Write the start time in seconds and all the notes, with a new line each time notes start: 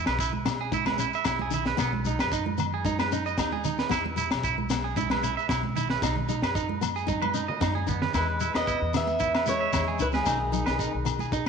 0.06 B1 B4, snare, low agogo, shekere
0.19 E4, kick, shekere
0.33 high conga
0.45 B3, snare, low agogo, shekere
0.61 G#4
0.72 D#4 E4, kick, high conga, shekere
0.86 B4, snare, high conga, low agogo
0.98 C#4 E4, shekere
1.13 E5, shekere
1.25 B1 B3 E4, kick, snare, low agogo, shekere
1.39 G#4, high conga
1.51 D#4 E4, low conga, shekere
1.66 B4, snare, shekere
1.77 B1 B3, kick, snare, low agogo, shekere
1.93 high conga
2.05 G#3 D#4, shekere
2.19 F#2 B4, snare, low agogo, shekere
2.32 D#4, kick, shekere
2.46 high conga
2.58 B3, low conga, low agogo, shekere
2.74 G#4
2.85 D#4, kick, high conga, shekere
2.99 B4, snare, high conga, low agogo
3.12 C#4 D#4, shekere
3.26 D#5, shekere
3.38 D#2 B3 D#4, kick, snare, low agogo, shekere
3.52 G#4, high conga
3.64 D#4, low conga, shekere
3.79 B4, snare, shekere
3.89 E2 B3 E4, kick, snare, low agogo, shekere
4.06 high conga
4.16 G#3 E4, shekere
4.31 B1, snare, low agogo, shekere
4.44 E4, kick, shekere
4.58 high conga
4.70 B3, snare, low agogo, shekere
4.84 G#4
4.96 D#4 E4, kick, high conga, shekere
5.10 B4, snare, high conga, low agogo
5.23 C#4 E4, shekere
5.37 E5, shekere
5.49 B1 B3 E4, kick, snare, low agogo, shekere
5.63 high conga
5.76 D#4 E4, low conga, shekere
5.90 B4, snare, shekere
6.02 B1 B3 D#4, kick, snare, low agogo, shekere
6.16 high conga, low conga
6.28 G#3 D#4, shekere
6.42 F#2 B4, snare, low agogo
6.55 D#4, kick, shekere
6.69 high conga
6.81 B3, low conga, low agogo, shekere
6.96 G#4, shekere
7.07 D#4, kick, high tom, high conga, shekere
7.22 B4, high tom, high conga, low agogo
7.34 C#4 D#4, shekere
7.48 D#5, mid tom
7.61 F#2 B3 D#4, kick, snare, high conga, low agogo, shekere
7.75 G#4, high conga
7.87 B3 D#4, kick, low conga, shekere
8.02 B4, snare, low conga
8.14 E2 G#3 B3 E4 B4, kick, snare, low agogo, shekere
8.40 G#3 E4, shekere
8.54 E2 B3 B4 D#5, snare, low agogo, shekere
8.67 E4, kick, shekere
8.81 E2
8.94 B3 E5, snare, low conga, low agogo, shekere
9.07 muted clean electric guitar stroke, high conga, shekere
9.20 D#4 E4, kick, shekere
9.35 B4, snare, low agogo
9.46 G#3 C#4 E4 C#5, high conga, shekere
9.61 E5
9.72 E2 B3 E4, kick, snare, low conga, low agogo, shekere
9.88 G#4
9.99 C#2 G#3 D#4 E4 B4, shekere
10.12 D#3 G#4 B4, snare, high conga, shekere
10.25 B1 B3 D#4, kick, snare, low agogo, shekere
10.52 F#3 D#4, shekere
10.66 B1 B4, snare, low agogo, shekere
10.79 D#4, kick, shekere
10.94 B1
11.05 B3, low conga, low agogo, shekere
11.19 G#4, high conga, shekere
11.32 D#4, kick, shekere